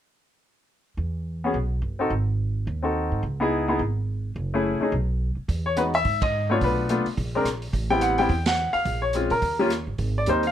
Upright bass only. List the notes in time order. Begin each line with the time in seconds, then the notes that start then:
0.97 E2
1.54 B1
1.82 G1
2.10 G#1
2.67 D#2
3.12 G#2
3.23 C#2
3.79 G#1
4.36 F#1
4.81 muted upright bass stroke
4.92 B1
5.37 muted upright bass stroke
5.48 E2
6.05 G#2
6.61 B1
7.06 muted upright bass stroke
7.17 A#1
7.45 A#1
7.73 A1
8.29 E2
8.74 muted upright bass stroke
8.85 A#1
9.30 A#2
9.42 D#2
9.87 G1
9.98 G#1
10.27 D#2